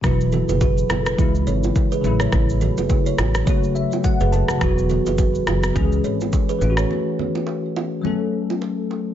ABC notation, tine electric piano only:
X:1
M:4/4
L:1/16
Q:"Swing 16ths" 1/4=105
K:F#m
V:1 name="Tine electric piano"
z4 F2 A B2 z6 z | z8 z2 e2 f2 a2 | z16 | z16 |]
V:2 name="Tine electric piano"
[B,,E,F,E]8 [C,E,G,E]6 [C,F,A,E]2- | [C,F,A,E]8 [C,F,A,F]8 | [E,F,B,F]8 [E,G,CG]6 [E,A,C^EF]2- | [E,A,C^EF]8 [F,A,CA]8 |]